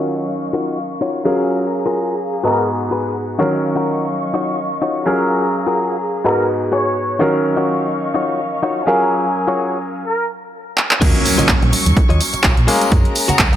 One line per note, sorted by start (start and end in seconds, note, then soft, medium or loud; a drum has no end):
0.00 1.21 D#3 medium
0.00 1.22 F#3 medium
0.00 1.24 F#3 medium
0.00 1.21 C#4 medium
0.00 0.24 D#4 medium
0.00 0.25 F4 medium
0.00 0.25 F#4 medium
0.00 1.22 A#4 medium
0.00 0.25 C#5 medium
0.00 1.24 D#5 medium
0.00 1.21 F5 medium
0.00 2.42 F5 medium
0.00 1.24 C#6 medium
0.53 0.77 D#4 medium
0.53 0.78 F4 medium
0.53 0.78 F#4 medium
0.53 0.78 A#4 medium
1.01 1.25 D#4 medium
1.01 1.24 F4 medium
1.01 1.24 F#4 medium
1.01 1.25 C#5 medium
1.25 2.40 F#3 medium
1.25 2.40 C#4 medium
1.25 1.64 F4 medium
1.25 1.64 F#4 medium
1.25 3.38 G#4 medium
1.25 2.40 G#4 medium
1.25 1.65 G#4 medium
1.25 1.65 A#4 loud
1.25 2.41 A#4 medium
1.25 2.40 F5 medium
1.25 2.43 A#5 medium
1.72 muted clean electric guitar stroke soft
1.86 2.15 F4 medium
1.86 2.15 F#4 medium
1.86 2.15 G#4 medium
1.86 2.15 A#4 medium
2.44 3.35 G#2 medium
2.44 3.35 B3 medium
2.44 3.35 D#4 medium
2.44 2.68 F#4 medium
2.44 3.36 F#4 medium
2.44 2.68 G#4 medium
2.44 2.64 A#4 medium
2.44 2.68 B4 medium
2.44 3.39 F#5 medium
2.44 3.36 A#5 medium
2.91 3.16 F#4 medium
2.91 3.16 G#4 medium
2.91 3.16 B4 medium
3.39 5.02 D#3 medium
3.39 5.05 F#3 medium
3.39 5.02 F#3 medium
3.39 5.02 C#4 medium
3.39 3.52 D#4 loud
3.39 3.53 F4 medium
3.39 3.53 F#4 loud
3.39 5.03 A#4 medium
3.39 3.53 C#5 loud
3.39 5.04 D#5 medium
3.39 5.04 F5 medium
3.39 5.02 F5 medium
3.39 5.04 C#6 medium
3.63 muted clean electric guitar stroke soft
3.76 4.05 D#4 medium
3.76 4.06 F4 medium
3.76 4.06 F#4 medium
3.76 4.06 A#4 medium
4.34 4.58 D#4 medium
4.34 4.58 F4 medium
4.34 4.59 F#4 medium
4.34 4.59 C#5 medium
4.82 5.05 D#4 medium
4.82 5.04 F4 medium
4.82 5.05 F#4 medium
4.82 5.06 C#5 medium
5.05 6.21 F#3 medium
5.05 6.21 C#4 medium
5.05 5.45 F4 medium
5.05 5.45 F#4 medium
5.05 7.18 G#4 medium
5.05 5.45 G#4 medium
5.05 6.21 G#4 medium
5.05 5.46 A#4 medium
5.05 6.22 A#4 medium
5.05 6.24 F5 medium
5.05 6.21 F5 medium
5.05 6.24 A#5 medium
5.53 muted clean electric guitar stroke soft
5.67 5.96 F4 medium
5.67 5.96 F#4 medium
5.67 5.96 G#4 medium
5.67 5.96 A#4 medium
6.24 7.16 G#2 medium
6.24 7.16 B3 medium
6.24 7.16 D#4 medium
6.24 6.49 F#4 medium
6.24 7.17 F#4 medium
6.24 6.49 G#4 medium
6.24 6.45 A#4 medium
6.24 6.49 B4 medium
6.24 7.17 A#5 medium
6.72 6.96 F#4 medium
6.72 6.96 G#4 medium
6.72 7.20 C#5 medium
6.72 6.97 C#5 loud
7.19 8.83 D#3 medium
7.19 10.03 F#3 medium
7.19 8.83 F#3 medium
7.19 8.83 C#4 medium
7.19 7.33 D#4 loud
7.19 7.33 F4 medium
7.19 7.34 F#4 loud
7.19 8.83 A#4 loud
7.19 7.34 C#5 loud
7.19 8.85 D#5 medium
7.19 10.03 F5 medium
7.19 8.83 F5 medium
7.19 8.86 C#6 medium
7.44 muted clean electric guitar stroke soft
7.57 7.86 D#4 medium
7.57 7.86 F4 medium
7.57 7.87 F#4 medium
7.57 7.87 C#5 medium
8.14 8.39 D#4 medium
8.14 8.39 F4 medium
8.14 8.39 F#4 medium
8.14 8.40 C#5 medium
8.63 8.85 D#4 medium
8.63 8.85 F4 medium
8.63 8.85 F#4 medium
8.63 8.87 C#5 medium
8.86 10.02 F#3 medium
8.86 10.02 C#4 medium
8.86 9.26 F4 loud
8.86 9.26 F#4 medium
8.86 9.26 G#4 medium
8.86 10.02 G#4 medium
8.86 10.05 A#4 medium
8.86 9.26 A#4 medium
8.86 10.03 A#4 medium
8.86 10.02 F5 medium
8.86 10.05 G#5 medium
9.34 muted clean electric guitar stroke soft
9.47 9.77 F4 medium
9.47 9.77 F#4 medium
9.47 9.77 G#4 medium
9.47 9.77 C#5 medium
10.06 10.26 A#4 medium
10.78 clap medium
10.91 clap medium
11.01 11.11 D#2 loud
11.01 12.64 F#3 medium
11.01 12.67 F#3 medium
11.01 12.64 A#3 medium
11.01 12.64 C#4 medium
11.01 11.20 F4 loud
11.01 11.20 F#4 medium
11.01 11.20 C#5 loud
11.01 11.20 D#5 loud
11.01 12.66 C#6 medium
11.01 kick loud
11.01 closed hi-hat medium
11.01 tambourine soft
11.01 crash loud
11.01 impact medium
11.15 closed hi-hat soft
11.25 open hi-hat loud
11.25 tambourine medium
11.38 11.49 F4 medium
11.38 11.49 F#4 medium
11.38 11.49 C#5 medium
11.38 11.49 D#5 medium
11.38 muted fingered electric bass stroke soft
11.38 closed hi-hat medium
11.38 tambourine medium
11.38 high conga medium
11.38 low conga medium
11.49 11.59 A#1 loud
11.49 kick loud
11.49 clap loud
11.49 closed hi-hat medium
11.62 11.70 A#1 loud
11.62 muted clean electric guitar stroke medium
11.62 closed hi-hat soft
11.62 high conga medium
11.73 muted clean electric guitar stroke soft
11.73 muted fingered electric bass stroke soft
11.73 open hi-hat medium
11.73 tambourine loud
11.86 11.94 D#2 loud
11.86 closed hi-hat medium
11.86 tambourine medium
11.86 high conga medium
11.97 muted fingered electric bass stroke soft
11.97 kick loud
11.97 closed hi-hat medium
11.97 tambourine soft
12.09 12.18 D#2 medium
12.09 12.20 F4 loud
12.09 12.20 F#4 medium
12.09 12.20 C#5 loud
12.09 12.21 D#5 loud
12.09 closed hi-hat soft
12.21 open hi-hat loud
12.21 tambourine loud
12.33 muted clean electric guitar stroke soft
12.33 muted fingered electric bass stroke soft
12.33 closed hi-hat medium
12.33 tambourine medium
12.43 12.54 A#1 medium
12.43 12.57 F4 medium
12.43 12.57 F#4 medium
12.43 12.58 C#5 medium
12.43 12.58 F5 medium
12.43 kick loud
12.43 clap loud
12.43 closed hi-hat medium
12.57 12.65 A#1 loud
12.57 closed hi-hat soft
12.67 13.56 G#3 medium
12.67 13.56 A#3 medium
12.67 13.56 C#4 medium
12.67 13.15 F#4 loud
12.67 13.15 G#4 medium
12.67 13.56 G#4 medium
12.67 13.16 A#4 medium
12.67 13.16 F5 loud
12.67 13.56 A#5 medium
12.67 open hi-hat medium
12.67 tambourine medium
12.67 high conga medium
12.81 closed hi-hat medium
12.81 tambourine medium
12.92 13.02 F#2 loud
12.92 kick loud
12.92 closed hi-hat medium
13.05 closed hi-hat soft
13.15 open hi-hat loud
13.15 tambourine medium
13.28 13.39 F#4 medium
13.28 13.39 G#4 medium
13.28 13.40 A#4 medium
13.28 13.40 F#5 medium
13.28 muted fingered electric bass stroke soft
13.28 closed hi-hat medium
13.28 tambourine soft
13.28 low conga medium
13.39 13.49 C#2 loud
13.39 kick loud
13.39 clap loud
13.39 closed hi-hat medium
13.52 13.56 F#1 loud
13.52 muted clean electric guitar stroke medium
13.52 closed hi-hat soft
13.52 high conga medium